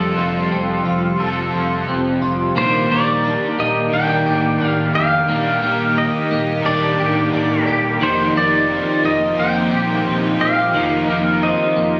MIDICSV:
0, 0, Header, 1, 6, 480
1, 0, Start_track
1, 0, Tempo, 681818
1, 1800, Time_signature, 4, 2, 24, 8
1, 8447, End_track
2, 0, Start_track
2, 0, Title_t, "Pedal steel guitar"
2, 0, Program_c, 0, 26
2, 0, Note_on_c, 0, 69, 66
2, 1295, Note_off_c, 0, 69, 0
2, 1816, Note_on_c, 0, 72, 88
2, 2054, Note_on_c, 0, 74, 93
2, 2055, Note_off_c, 0, 72, 0
2, 2531, Note_off_c, 0, 74, 0
2, 2534, Note_on_c, 0, 75, 98
2, 2770, Note_on_c, 0, 79, 92
2, 2774, Note_off_c, 0, 75, 0
2, 3284, Note_off_c, 0, 79, 0
2, 3284, Note_on_c, 0, 77, 92
2, 3484, Note_off_c, 0, 77, 0
2, 3487, Note_on_c, 0, 77, 98
2, 4210, Note_on_c, 0, 75, 83
2, 4225, Note_off_c, 0, 77, 0
2, 4685, Note_off_c, 0, 75, 0
2, 4687, Note_on_c, 0, 74, 75
2, 5376, Note_off_c, 0, 74, 0
2, 5655, Note_on_c, 0, 72, 86
2, 5893, Note_off_c, 0, 72, 0
2, 5896, Note_on_c, 0, 74, 102
2, 6372, Note_off_c, 0, 74, 0
2, 6374, Note_on_c, 0, 75, 97
2, 6614, Note_off_c, 0, 75, 0
2, 6614, Note_on_c, 0, 79, 104
2, 7327, Note_off_c, 0, 79, 0
2, 7329, Note_on_c, 0, 77, 103
2, 8048, Note_on_c, 0, 75, 83
2, 8066, Note_off_c, 0, 77, 0
2, 8447, Note_off_c, 0, 75, 0
2, 8447, End_track
3, 0, Start_track
3, 0, Title_t, "Overdriven electric guitar"
3, 0, Program_c, 1, 29
3, 0, Note_on_c, 1, 53, 63
3, 0, Note_on_c, 1, 60, 72
3, 0, Note_on_c, 1, 65, 77
3, 0, Note_on_c, 1, 69, 67
3, 105, Note_off_c, 1, 69, 0
3, 113, Note_on_c, 1, 69, 46
3, 117, Note_off_c, 1, 53, 0
3, 122, Note_off_c, 1, 60, 0
3, 126, Note_off_c, 1, 65, 0
3, 134, Note_on_c, 1, 65, 43
3, 147, Note_on_c, 1, 60, 40
3, 820, Note_on_c, 1, 53, 55
3, 837, Note_off_c, 1, 69, 0
3, 841, Note_off_c, 1, 60, 0
3, 847, Note_off_c, 1, 65, 0
3, 849, Note_on_c, 1, 60, 56
3, 875, Note_on_c, 1, 65, 67
3, 897, Note_on_c, 1, 69, 67
3, 1790, Note_off_c, 1, 53, 0
3, 1793, Note_on_c, 1, 51, 77
3, 1799, Note_off_c, 1, 60, 0
3, 1802, Note_on_c, 1, 58, 77
3, 1807, Note_off_c, 1, 65, 0
3, 1810, Note_on_c, 1, 62, 81
3, 1816, Note_off_c, 1, 69, 0
3, 1819, Note_on_c, 1, 67, 85
3, 2024, Note_off_c, 1, 67, 0
3, 2033, Note_on_c, 1, 67, 57
3, 2037, Note_off_c, 1, 51, 0
3, 2041, Note_off_c, 1, 58, 0
3, 2045, Note_off_c, 1, 62, 0
3, 2066, Note_on_c, 1, 58, 43
3, 2738, Note_on_c, 1, 51, 60
3, 2765, Note_off_c, 1, 58, 0
3, 2768, Note_on_c, 1, 58, 57
3, 2793, Note_on_c, 1, 62, 60
3, 2810, Note_off_c, 1, 67, 0
3, 2813, Note_on_c, 1, 67, 62
3, 3708, Note_off_c, 1, 51, 0
3, 3711, Note_on_c, 1, 51, 76
3, 3716, Note_off_c, 1, 58, 0
3, 3719, Note_off_c, 1, 62, 0
3, 3719, Note_on_c, 1, 58, 74
3, 3727, Note_on_c, 1, 62, 81
3, 3731, Note_off_c, 1, 67, 0
3, 3733, Note_on_c, 1, 67, 83
3, 3938, Note_off_c, 1, 67, 0
3, 3946, Note_on_c, 1, 67, 53
3, 3955, Note_off_c, 1, 51, 0
3, 3960, Note_off_c, 1, 58, 0
3, 3964, Note_off_c, 1, 62, 0
3, 3980, Note_on_c, 1, 58, 39
3, 4655, Note_on_c, 1, 51, 62
3, 4682, Note_off_c, 1, 58, 0
3, 4685, Note_on_c, 1, 58, 63
3, 4710, Note_on_c, 1, 62, 63
3, 4729, Note_off_c, 1, 67, 0
3, 4732, Note_on_c, 1, 67, 62
3, 5629, Note_off_c, 1, 51, 0
3, 5632, Note_on_c, 1, 53, 74
3, 5638, Note_off_c, 1, 58, 0
3, 5641, Note_on_c, 1, 58, 71
3, 5646, Note_off_c, 1, 62, 0
3, 5648, Note_on_c, 1, 63, 79
3, 5652, Note_off_c, 1, 67, 0
3, 5655, Note_on_c, 1, 67, 80
3, 5860, Note_off_c, 1, 67, 0
3, 5868, Note_on_c, 1, 67, 55
3, 5876, Note_off_c, 1, 53, 0
3, 5878, Note_off_c, 1, 63, 0
3, 5881, Note_off_c, 1, 58, 0
3, 5886, Note_on_c, 1, 63, 48
3, 5903, Note_on_c, 1, 58, 44
3, 6577, Note_on_c, 1, 53, 54
3, 6598, Note_off_c, 1, 67, 0
3, 6603, Note_off_c, 1, 58, 0
3, 6606, Note_on_c, 1, 58, 63
3, 6628, Note_off_c, 1, 63, 0
3, 6631, Note_on_c, 1, 63, 70
3, 6653, Note_on_c, 1, 67, 67
3, 7545, Note_off_c, 1, 53, 0
3, 7554, Note_on_c, 1, 53, 71
3, 7561, Note_off_c, 1, 58, 0
3, 7563, Note_on_c, 1, 58, 71
3, 7568, Note_off_c, 1, 63, 0
3, 7571, Note_on_c, 1, 63, 86
3, 7575, Note_off_c, 1, 67, 0
3, 7577, Note_on_c, 1, 67, 82
3, 7781, Note_off_c, 1, 67, 0
3, 7789, Note_on_c, 1, 67, 57
3, 7797, Note_off_c, 1, 53, 0
3, 7801, Note_off_c, 1, 63, 0
3, 7802, Note_off_c, 1, 58, 0
3, 7809, Note_on_c, 1, 63, 49
3, 7824, Note_on_c, 1, 58, 47
3, 8447, Note_off_c, 1, 58, 0
3, 8447, Note_off_c, 1, 63, 0
3, 8447, Note_off_c, 1, 67, 0
3, 8447, End_track
4, 0, Start_track
4, 0, Title_t, "Clean electric guitar"
4, 0, Program_c, 2, 27
4, 0, Note_on_c, 2, 53, 73
4, 0, Note_on_c, 2, 69, 62
4, 122, Note_on_c, 2, 65, 48
4, 363, Note_on_c, 2, 60, 54
4, 593, Note_off_c, 2, 65, 0
4, 602, Note_on_c, 2, 65, 52
4, 842, Note_off_c, 2, 69, 0
4, 845, Note_on_c, 2, 69, 61
4, 1075, Note_off_c, 2, 65, 0
4, 1083, Note_on_c, 2, 65, 49
4, 1315, Note_off_c, 2, 60, 0
4, 1324, Note_on_c, 2, 60, 49
4, 1554, Note_off_c, 2, 65, 0
4, 1562, Note_on_c, 2, 65, 53
4, 1801, Note_off_c, 2, 60, 0
4, 1802, Note_off_c, 2, 53, 0
4, 1804, Note_on_c, 2, 58, 78
4, 1849, Note_off_c, 2, 65, 0
4, 1850, Note_off_c, 2, 69, 0
4, 2041, Note_off_c, 2, 58, 0
4, 2044, Note_on_c, 2, 58, 59
4, 2284, Note_on_c, 2, 62, 58
4, 2521, Note_off_c, 2, 58, 0
4, 2523, Note_on_c, 2, 58, 55
4, 2755, Note_off_c, 2, 62, 0
4, 2764, Note_on_c, 2, 62, 61
4, 3001, Note_on_c, 2, 67, 67
4, 3233, Note_off_c, 2, 62, 0
4, 3241, Note_on_c, 2, 62, 53
4, 3479, Note_off_c, 2, 67, 0
4, 3481, Note_on_c, 2, 67, 71
4, 3718, Note_off_c, 2, 58, 0
4, 3721, Note_on_c, 2, 58, 83
4, 3957, Note_off_c, 2, 58, 0
4, 3959, Note_on_c, 2, 58, 61
4, 4201, Note_off_c, 2, 62, 0
4, 4439, Note_off_c, 2, 58, 0
4, 4441, Note_on_c, 2, 58, 60
4, 4682, Note_on_c, 2, 62, 64
4, 4921, Note_off_c, 2, 67, 0
4, 4924, Note_on_c, 2, 67, 65
4, 5154, Note_off_c, 2, 62, 0
4, 5162, Note_on_c, 2, 62, 56
4, 5398, Note_off_c, 2, 67, 0
4, 5401, Note_on_c, 2, 67, 68
4, 5642, Note_on_c, 2, 51, 86
4, 5689, Note_off_c, 2, 62, 0
4, 5880, Note_off_c, 2, 58, 0
4, 5882, Note_on_c, 2, 58, 57
4, 6122, Note_on_c, 2, 60, 59
4, 6358, Note_off_c, 2, 58, 0
4, 6361, Note_on_c, 2, 58, 62
4, 6593, Note_off_c, 2, 60, 0
4, 6602, Note_on_c, 2, 60, 68
4, 6838, Note_off_c, 2, 67, 0
4, 6841, Note_on_c, 2, 67, 62
4, 7071, Note_off_c, 2, 60, 0
4, 7079, Note_on_c, 2, 60, 54
4, 7318, Note_off_c, 2, 67, 0
4, 7321, Note_on_c, 2, 67, 71
4, 7558, Note_off_c, 2, 51, 0
4, 7560, Note_on_c, 2, 51, 80
4, 7798, Note_off_c, 2, 58, 0
4, 7800, Note_on_c, 2, 58, 60
4, 8032, Note_off_c, 2, 60, 0
4, 8041, Note_on_c, 2, 60, 65
4, 8277, Note_off_c, 2, 58, 0
4, 8280, Note_on_c, 2, 58, 58
4, 8447, Note_off_c, 2, 51, 0
4, 8447, Note_off_c, 2, 58, 0
4, 8447, Note_off_c, 2, 60, 0
4, 8447, Note_off_c, 2, 67, 0
4, 8447, End_track
5, 0, Start_track
5, 0, Title_t, "Analog synth pad"
5, 0, Program_c, 3, 89
5, 0, Note_on_c, 3, 48, 71
5, 0, Note_on_c, 3, 53, 67
5, 0, Note_on_c, 3, 55, 66
5, 0, Note_on_c, 3, 65, 73
5, 1775, Note_off_c, 3, 55, 0
5, 1780, Note_off_c, 3, 53, 0
5, 1780, Note_off_c, 3, 65, 0
5, 1781, Note_off_c, 3, 48, 0
5, 1796, Note_on_c, 3, 51, 70
5, 1800, Note_on_c, 3, 58, 65
5, 1800, Note_on_c, 3, 67, 78
5, 5610, Note_off_c, 3, 51, 0
5, 5640, Note_on_c, 3, 53, 73
5, 5642, Note_on_c, 3, 63, 64
5, 7532, Note_off_c, 3, 67, 0
5, 7555, Note_on_c, 3, 65, 84
5, 8447, Note_off_c, 3, 53, 0
5, 8447, Note_off_c, 3, 58, 0
5, 8447, Note_off_c, 3, 63, 0
5, 8447, Note_off_c, 3, 65, 0
5, 8447, End_track
6, 0, Start_track
6, 0, Title_t, "Sub bass"
6, 0, Program_c, 4, 38
6, 0, Note_on_c, 4, 29, 93
6, 92, Note_off_c, 4, 29, 0
6, 122, Note_on_c, 4, 29, 89
6, 332, Note_off_c, 4, 29, 0
6, 366, Note_on_c, 4, 29, 101
6, 574, Note_off_c, 4, 29, 0
6, 602, Note_on_c, 4, 29, 84
6, 812, Note_off_c, 4, 29, 0
6, 842, Note_on_c, 4, 29, 97
6, 1053, Note_off_c, 4, 29, 0
6, 1083, Note_on_c, 4, 29, 88
6, 1293, Note_off_c, 4, 29, 0
6, 1321, Note_on_c, 4, 29, 98
6, 1532, Note_off_c, 4, 29, 0
6, 1563, Note_on_c, 4, 29, 105
6, 1773, Note_off_c, 4, 29, 0
6, 1803, Note_on_c, 4, 27, 107
6, 2013, Note_off_c, 4, 27, 0
6, 2042, Note_on_c, 4, 27, 94
6, 2358, Note_off_c, 4, 27, 0
6, 2523, Note_on_c, 4, 27, 104
6, 2733, Note_off_c, 4, 27, 0
6, 2763, Note_on_c, 4, 27, 98
6, 2973, Note_off_c, 4, 27, 0
6, 3003, Note_on_c, 4, 26, 83
6, 3213, Note_off_c, 4, 26, 0
6, 3242, Note_on_c, 4, 26, 95
6, 3452, Note_off_c, 4, 26, 0
6, 3480, Note_on_c, 4, 29, 94
6, 3691, Note_off_c, 4, 29, 0
6, 3719, Note_on_c, 4, 27, 97
6, 3930, Note_off_c, 4, 27, 0
6, 3961, Note_on_c, 4, 27, 101
6, 4277, Note_off_c, 4, 27, 0
6, 4439, Note_on_c, 4, 27, 107
6, 4651, Note_off_c, 4, 27, 0
6, 4678, Note_on_c, 4, 27, 99
6, 4890, Note_off_c, 4, 27, 0
6, 4921, Note_on_c, 4, 26, 89
6, 5132, Note_off_c, 4, 26, 0
6, 5159, Note_on_c, 4, 26, 89
6, 5371, Note_off_c, 4, 26, 0
6, 5401, Note_on_c, 4, 27, 87
6, 5612, Note_off_c, 4, 27, 0
6, 5640, Note_on_c, 4, 29, 97
6, 5851, Note_off_c, 4, 29, 0
6, 5880, Note_on_c, 4, 29, 98
6, 6197, Note_off_c, 4, 29, 0
6, 6358, Note_on_c, 4, 29, 98
6, 6570, Note_off_c, 4, 29, 0
6, 6600, Note_on_c, 4, 29, 106
6, 6811, Note_off_c, 4, 29, 0
6, 6839, Note_on_c, 4, 27, 84
6, 7050, Note_off_c, 4, 27, 0
6, 7076, Note_on_c, 4, 27, 95
6, 7289, Note_off_c, 4, 27, 0
6, 7320, Note_on_c, 4, 27, 97
6, 7531, Note_off_c, 4, 27, 0
6, 7559, Note_on_c, 4, 29, 97
6, 7770, Note_off_c, 4, 29, 0
6, 7801, Note_on_c, 4, 29, 100
6, 8117, Note_off_c, 4, 29, 0
6, 8281, Note_on_c, 4, 29, 95
6, 8447, Note_off_c, 4, 29, 0
6, 8447, End_track
0, 0, End_of_file